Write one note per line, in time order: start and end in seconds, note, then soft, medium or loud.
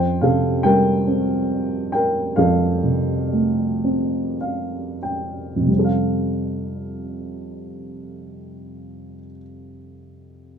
0.00 2.33 F2 soft
0.00 0.20 C5 medium
0.00 0.24 G5 medium
0.21 1.89 C3 soft
0.21 0.62 A4 soft
0.21 0.66 F5 medium
0.63 2.33 G3 soft
0.63 1.90 A#4 medium
0.63 1.89 G5 medium
1.07 2.79 C4 soft
1.92 2.35 A#4 soft
1.92 2.38 G5 medium
2.36 5.54 F2 soft
2.36 4.36 A4 soft
2.36 4.35 F5 medium
2.84 4.97 C3 soft
3.32 5.65 A3 soft
3.84 5.65 C4 soft
4.41 4.98 F5 soft
5.03 5.66 G5 soft
5.56 9.13 F2 soft
5.61 9.18 C3 soft
5.67 9.24 G3 soft
5.73 9.30 C4 soft
5.79 9.36 A4 soft
5.84 9.41 F5 soft